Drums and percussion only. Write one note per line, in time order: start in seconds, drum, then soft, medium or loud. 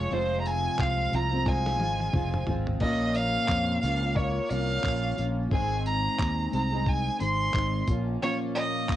0.46 tambourine medium
0.79 kick loud
0.79 clap loud
1.13 tambourine medium
1.46 kick loud
1.46 snare medium
1.66 snare medium
1.80 high tom medium
2.00 high tom medium
2.14 kick loud
2.14 mid tom medium
2.34 mid tom medium
2.47 floor tom medium
2.67 floor tom medium
2.81 kick medium
2.81 crash medium
3.15 tambourine medium
3.49 kick medium
3.49 clap loud
3.83 tambourine medium
4.16 kick loud
4.51 tambourine medium
4.84 kick loud
4.84 clap loud
5.18 tambourine medium
5.51 kick loud
5.86 tambourine medium
6.19 kick loud
6.19 clap loud
6.53 tambourine medium
6.87 kick loud
7.20 tambourine medium
7.54 kick loud
7.54 clap loud
7.87 kick loud
7.87 tambourine medium
8.56 tambourine medium
8.89 kick loud
8.89 clap loud